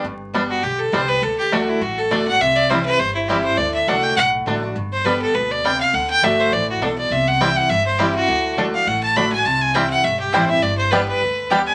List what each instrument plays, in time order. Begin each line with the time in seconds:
0.04 upright bass G1, steel-string acoustic guitar G2
0.34 steel-string acoustic guitar G3 B3 D4 G4, five-string banjo G3 B3 D4
0.50 fiddle F#4
0.63 upright bass B1, steel-string acoustic guitar D3, fiddle G4
0.79 fiddle A4
0.92 upright bass C2, steel-string acoustic guitar G3 B3 D4 G4, five-string banjo G3 B3 D4, fiddle C5
1.08 fiddle B4
1.22 upright bass D2, steel-string acoustic guitar D3, fiddle A4
1.38 fiddle G4
1.52 steel-string acoustic guitar D3 A3 D4 F#4, five-string banjo A3 D4, fiddle F#4
1.68 fiddle E4
1.81 upright bass A1, steel-string acoustic guitar A2, fiddle F#4
1.98 fiddle A4
2.10 steel-string acoustic guitar D3 A3 D4 F#4, five-string banjo A3 D4, fiddle D5
2.27 steel-string acoustic guitar D4 F#4, fiddle F#5
2.40 upright bass C2, steel-string acoustic guitar C3, fiddle E5
2.56 fiddle D5
2.70 steel-string acoustic guitar E3 G3 C4 E4, five-string banjo G3 C4 E4, fiddle C5
2.85 fiddle B4
2.99 upright bass G1, steel-string acoustic guitar G2, fiddle C5
3.15 fiddle E4
3.28 steel-string acoustic guitar E3 G3 C4 E4, five-string banjo G3 C4 E4, fiddle G4
3.44 fiddle C5
3.57 upright bass D2, steel-string acoustic guitar D3, fiddle D5
3.74 fiddle E5
3.87 upright bass C2, steel-string acoustic guitar D3 A3 D4 F#4, five-string banjo A3 D4, fiddle F#5
4.03 fiddle G5
4.16 upright bass B1, steel-string acoustic guitar A2, fiddle F#5
4.46 upright bass A1, steel-string acoustic guitar D3 A3 D4 F#4, five-string banjo A3 D4
4.62 steel-string acoustic guitar D4 F#4
4.75 upright bass G1, steel-string acoustic guitar G2
4.92 fiddle C5
5.04 steel-string acoustic guitar D3 G3 B3 G4, five-string banjo G3 B3 D4, fiddle B4
5.22 fiddle A4
5.34 upright bass D2, steel-string acoustic guitar B2, fiddle B4
5.51 fiddle D5
5.64 steel-string acoustic guitar C3, five-string banjo G3 B3 D4, fiddle G5
5.80 fiddle F5
5.93 upright bass D2, steel-string acoustic guitar D3, fiddle F#5
6.10 fiddle G5
6.22 upright bass G1, steel-string acoustic guitar D3 A3 D4 F#4, five-string banjo A3 D4, fiddle E5
6.40 fiddle C5
6.52 upright bass A1, steel-string acoustic guitar E3, fiddle D5
6.70 fiddle F#4
6.81 upright bass B1, steel-string acoustic guitar B2, five-string banjo A3 D4, fiddle A4
6.98 fiddle D5
7.10 upright bass C2, steel-string acoustic guitar C3, fiddle E5
7.27 fiddle F#5
7.40 steel-string acoustic guitar E3 G3 C4 E4, five-string banjo G3 C4 E4, fiddle G5
7.56 fiddle F#5
7.69 upright bass G1, steel-string acoustic guitar G2, fiddle E5
7.86 fiddle C5
7.98 steel-string acoustic guitar E3 G3 C4 E4, five-string banjo G3 C4 E4, fiddle G4
8.15 fiddle F#4
8.28 upright bass D2, steel-string acoustic guitar D3
8.57 steel-string acoustic guitar D3 A3 D4 F#4, five-string banjo A3 D4
8.74 steel-string acoustic guitar D4 F#4, fiddle F5
8.87 upright bass A1, steel-string acoustic guitar A2, fiddle F#5
9.03 fiddle A5
9.16 steel-string acoustic guitar D3 A3 D4 F#4, five-string banjo A3 D4, fiddle B5
9.32 steel-string acoustic guitar F#4, fiddle G#5
9.45 upright bass C2, steel-string acoustic guitar C3, fiddle A5
9.61 fiddle G#5
9.74 steel-string acoustic guitar E3 G3 C4 E4, five-string banjo G3 C4 E4, mandolin C4 E4 C5 G5, fiddle G5
9.90 fiddle F#5
10.04 upright bass B1, steel-string acoustic guitar G2, fiddle E5
10.20 fiddle G4
10.33 upright bass A1, steel-string acoustic guitar E3 G3 C4 E4, five-string banjo G3 C4 E4, mandolin C4 E4 C5 G5, fiddle C5
10.49 steel-string acoustic guitar C4 E4, fiddle E5
10.62 upright bass G1, steel-string acoustic guitar G2, fiddle D5
10.78 fiddle C5
10.91 steel-string acoustic guitar G3 B3 D4 G4, five-string banjo G3 B3 D4, mandolin B3 G4 D5 G5, fiddle B4
11.08 fiddle B4
11.21 upright bass D2, steel-string acoustic guitar D3
11.50 steel-string acoustic guitar G3 B3 D4 G4, five-string banjo G3 B3 D4, mandolin B3 G4 D5 G5
11.66 fiddle G#5